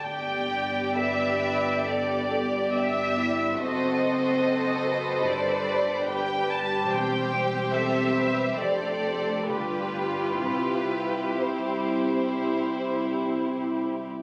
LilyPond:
<<
  \new Staff \with { instrumentName = "Violin section" } { \time 4/4 \key g \major \tempo 4 = 68 g''4 e''4 d''4 e''4 | dis''2 d''4 g''8 a''8 | \key c \major g''4 e''4 d''4 b'4 | b'4 c''2~ c''8 r8 | }
  \new Staff \with { instrumentName = "Violin section" } { \time 4/4 \key g \major << { d''1 | c''2. b'4 | \key c \major c''2. g'4~ | g'1 | } \\ { g'1 | a'2. g'4~ | g'2. f'4~ | f'4 e'2. | } >> }
  \new Staff \with { instrumentName = "Cello section" } { \time 4/4 \key g \major g'4 b'4 a'8 g'8 g'8 e'8 | fis'4 a'8 b'2~ b'8 | \key c \major g'4 a'8 b'8 a'4 g'4 | e'2.~ e'8 r8 | }
  \new Staff \with { instrumentName = "Viola section" } { \time 4/4 \key g \major << { d'1 | fis'2 d'2 | \key c \major c'2 d'2 | c'1 | } \\ { b1 | c'2 g2~ | g2 a4 g4~ | g1 | } >> }
  \new Staff \with { instrumentName = "Double bass section" } { \clef bass \time 4/4 \key g \major g,,1 | fis,,2 g,,2 | \key c \major e,,2 f,,4 g,,4 | c,1 | }
>>